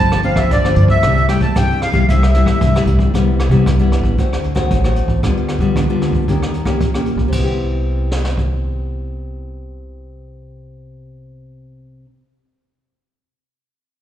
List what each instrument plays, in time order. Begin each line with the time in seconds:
Already playing: nylon-string guitar F3 C4 D4, accordion A5
0.00 upright bass G1, nylon-string guitar G2
0.12 cross-stick
0.23 nylon-string guitar F3 C4 D4, accordion F5, closed hi-hat
0.36 accordion E5, kick, cross-stick
0.51 upright bass G1, nylon-string guitar D3, accordion D5, kick, closed hi-hat
0.65 nylon-string guitar F3 C4 D4, cross-stick
0.76 upright bass G2, accordion D5, closed hi-hat
0.88 accordion E5, kick
1.03 upright bass C2, nylon-string guitar C3 G3 A3 E4, kick, cross-stick, closed hi-hat
1.17 closed hi-hat
1.28 nylon-string guitar G3 A3 E4, accordion G5, cross-stick, closed hi-hat
1.41 accordion A5, kick, closed hi-hat
1.56 nylon-string guitar G2 G3 A3 E4, upright bass C3, accordion G5, kick, cross-stick, closed hi-hat
1.70 closed hi-hat
1.82 accordion F5, cross-stick, closed hi-hat
1.92 upright bass C2, nylon-string guitar G3 A3 E4, kick, closed hi-hat
2.09 upright bass C2, nylon-string guitar C3 G3 A3 E4, accordion E5, kick, closed hi-hat
2.23 cross-stick
2.34 nylon-string guitar G3 A3 E4, closed hi-hat
2.46 kick, cross-stick
2.61 upright bass C2, nylon-string guitar G2, kick, closed hi-hat
2.75 nylon-string guitar G3 A3 E4, cross-stick, closed hi-hat
2.86 upright bass C2, closed hi-hat
2.99 kick
3.14 upright bass C2, nylon-string guitar C3 G3 B3 E4, kick, cross-stick, closed hi-hat
3.39 cross-stick, closed hi-hat
3.49 upright bass C3, nylon-string guitar G3 B3 E4, kick, closed hi-hat
3.66 upright bass C2, nylon-string guitar G2, kick, cross-stick, closed hi-hat
3.79 nylon-string guitar G3 B3 E4, closed hi-hat
3.92 cross-stick, closed hi-hat
4.02 upright bass A1, kick, closed hi-hat
4.18 upright bass D2, nylon-string guitar D3 A3 C4 F#4, kick, closed hi-hat
4.33 cross-stick, closed hi-hat
4.44 closed hi-hat
4.55 nylon-string guitar A3 C4 F#4, kick, cross-stick
4.71 upright bass A1, nylon-string guitar A2, kick, closed hi-hat
4.84 nylon-string guitar A3 C4 F#4, cross-stick
4.96 closed hi-hat
5.06 upright bass A1, kick
5.23 upright bass D2, nylon-string guitar D3 G3 B3 F4, kick, cross-stick, closed hi-hat
5.37 closed hi-hat
5.48 cross-stick, closed hi-hat
5.59 upright bass D3, nylon-string guitar G3 B3 F4, kick
5.76 upright bass D2, nylon-string guitar D3, kick, cross-stick, closed hi-hat
5.90 nylon-string guitar G3 B3 F4
6.02 cross-stick, closed hi-hat
6.11 upright bass D2, kick
6.28 upright bass D#2, nylon-string guitar D#3 A#3 C#4 G4, kick, closed hi-hat
6.42 cross-stick, closed hi-hat
6.54 closed hi-hat
6.65 nylon-string guitar A#3 C#4 G4, kick, cross-stick
6.80 upright bass A#1, nylon-string guitar A#2, kick, closed hi-hat
6.94 nylon-string guitar A#3 C#4 G4, cross-stick
7.06 closed hi-hat
7.16 upright bass A#1, kick
7.28 nylon-string guitar C3
7.32 upright bass C2, nylon-string guitar B3, kick, crash
7.39 nylon-string guitar E4
7.43 nylon-string guitar G4
8.11 snare
8.25 snare
8.38 kick